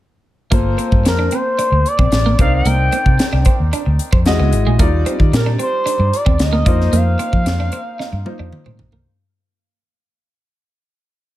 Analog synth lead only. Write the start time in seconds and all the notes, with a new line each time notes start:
1.07 A#4
1.34 C5
1.87 D5
2.41 F5
2.55 G5
5.35 A#4
5.62 C5
6.16 D5
6.42 D#5
6.96 F5